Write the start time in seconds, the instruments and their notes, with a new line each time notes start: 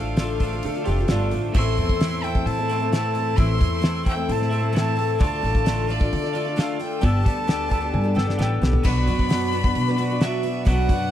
Already playing: upright bass A1, clean electric guitar D3, twelve-string acoustic guitar A3 D4 F4, accordion F4 A4 C5 A5, fiddle F5
0.00 twelve-string acoustic guitar A4
0.17 twelve-string acoustic guitar D3 A3 D4 F4 A4, snare, open hi-hat
0.40 twelve-string acoustic guitar A3 D4, clean electric guitar F4, kick, open hi-hat
0.44 twelve-string acoustic guitar F4 A4
0.53 twelve-string acoustic guitar D4 F4 A4
0.63 upright bass D3, upright piano A4, open hi-hat
0.75 twelve-string acoustic guitar D4 F4 A4
0.84 upright bass F1, twelve-string acoustic guitar A3 D4, clean electric guitar F4, upright piano G4, open hi-hat
0.89 twelve-string acoustic guitar F4 A4
0.99 twelve-string acoustic guitar D4 F4 A4
1.08 upright bass G1, twelve-string acoustic guitar D3 A3 D4 F4 A4, upright piano F4, snare, open hi-hat
1.31 upright bass A1, twelve-string acoustic guitar A3 D4 F4 A4, open hi-hat
1.54 upright bass A1, twelve-string acoustic guitar A2 E3 A3 C4 E4 A4, accordion E4, fiddle C6, kick, crash
1.77 upright bass E2, twelve-string acoustic guitar A3 C4 E4 A4, open hi-hat
1.89 kick
2.00 twelve-string acoustic guitar A2 E3 A3 C4 E4 A4, snare, open hi-hat
2.24 twelve-string acoustic guitar A3 C4 E4 A4, fiddle G5, open hi-hat
2.34 twelve-string acoustic guitar A3 C4 E4 A4, kick
2.46 upright bass A2, fiddle A5, open hi-hat
2.58 twelve-string acoustic guitar A3 C4 E4 A4
2.70 twelve-string acoustic guitar A3 C4 E4 A4, open hi-hat
2.80 twelve-string acoustic guitar A3 C4 E4 A4
2.93 twelve-string acoustic guitar A2 E3 A3 C4 E4 A4, fiddle A5, snare, open hi-hat
3.14 twelve-string acoustic guitar A3 C4 E4 A4, open hi-hat
3.36 upright bass A1, twelve-string acoustic guitar A2 E3 A3 C4 E4 A4, fiddle C6, kick, open hi-hat
3.57 upright bass E2, twelve-string acoustic guitar A3 C4 E4 A4, kick, open hi-hat
3.62 clean electric guitar A3
3.81 twelve-string acoustic guitar A2 E3 A3 C4 E4 A4, snare, open hi-hat
4.03 twelve-string acoustic guitar A3 C4 E4 A4, kick, open hi-hat
4.08 fiddle G5
4.16 twelve-string acoustic guitar A3 C4 E4 A4
4.29 upright bass A2, fiddle A5, open hi-hat
4.38 twelve-string acoustic guitar A3 C4 E4 A4, snare
4.50 twelve-string acoustic guitar A3 C4 E4 A4, open hi-hat
4.60 twelve-string acoustic guitar A3 C4 E4 A4
4.72 twelve-string acoustic guitar A2 E3 A3 C4 E4 A4, open hi-hat
4.77 fiddle A5, snare
4.96 twelve-string acoustic guitar A3 C4 E4 A4, open hi-hat
5.19 upright bass D2, twelve-string acoustic guitar D3 A3 D4 F4 A4, accordion F4 A4 D5 A5, fiddle A5, kick, open hi-hat
5.42 upright bass A1, twelve-string acoustic guitar A3 D4 F4 A4, open hi-hat
5.55 kick
5.66 twelve-string acoustic guitar D3 A3 D4 F4 A4, snare, open hi-hat
5.88 twelve-string acoustic guitar A3 D4 F4 A4, fiddle D5, open hi-hat
6.00 twelve-string acoustic guitar D4 F4 A4, kick
6.13 upright bass D3, open hi-hat
6.22 twelve-string acoustic guitar D4 F4 A4, snare
6.33 twelve-string acoustic guitar A3 D4 F4 A4, open hi-hat
6.45 twelve-string acoustic guitar D4 F4 A4
6.56 twelve-string acoustic guitar D3 A3 D4 F4 A4, fiddle F5, snare, open hi-hat
6.79 twelve-string acoustic guitar A3 D4 F4 A4, fiddle G5, open hi-hat
7.00 upright bass G1, twelve-string acoustic guitar G3 B3 D4 G4 A4, accordion G4 B4, fiddle A5, kick, open hi-hat
7.22 upright bass D2, twelve-string acoustic guitar B3 D4 G4 A4, kick, open hi-hat
7.28 clean electric guitar B3
7.47 twelve-string acoustic guitar G3 B3 D4 G4 A4, snare, open hi-hat
7.68 twelve-string acoustic guitar B3 D4 G4 A4, upright piano G#5 A5, kick, open hi-hat
7.75 clean electric guitar B3
7.81 twelve-string acoustic guitar D4 G4 A4
7.94 upright bass G2, upright piano G#5, high tom
8.04 twelve-string acoustic guitar D4 G4 A4
8.15 upright bass G1, twelve-string acoustic guitar B3 D4 G4 A4, upright piano G5, snare
8.20 clean electric guitar B3
8.26 twelve-string acoustic guitar D4 G4 A4, snare
8.38 upright bass A1, twelve-string acoustic guitar G3 B3 D4 G4 A4, upright piano F#5 G5, snare
8.61 upright bass B1, twelve-string acoustic guitar B3 D4 G4 A4, snare
8.73 floor tom
8.83 upright bass B1, twelve-string acoustic guitar B2 F#3 B3 D4 F#4 B4, accordion F#4 B4 D5 B5, fiddle B5, kick, crash
9.07 upright bass F#2, twelve-string acoustic guitar B3 D4 F#4 B4, open hi-hat
9.19 kick
9.29 twelve-string acoustic guitar B2 F#3 B3 D4 F#4 B4, snare, open hi-hat
9.52 twelve-string acoustic guitar B3 D4 F#4 B4, open hi-hat
9.63 twelve-string acoustic guitar B3 D4 F#4 B4, kick
9.75 upright bass B2, open hi-hat
9.87 twelve-string acoustic guitar B3 D4 F#4 B4, snare
9.97 twelve-string acoustic guitar B3 D4 F#4 B4, open hi-hat
10.10 twelve-string acoustic guitar B3 D4 F#4 B4
10.21 twelve-string acoustic guitar B2 F#3 B3 D4 F#4 B4, fiddle E5, snare, open hi-hat
10.43 twelve-string acoustic guitar B3 D4 F#4 B4, open hi-hat
10.65 upright bass B1, twelve-string acoustic guitar B2 F#3 B3 D4 F#4 B4, fiddle F#5, kick, open hi-hat
10.88 upright bass F#2, twelve-string acoustic guitar B3 D4 F#4 B4, kick, open hi-hat
10.92 clean electric guitar B3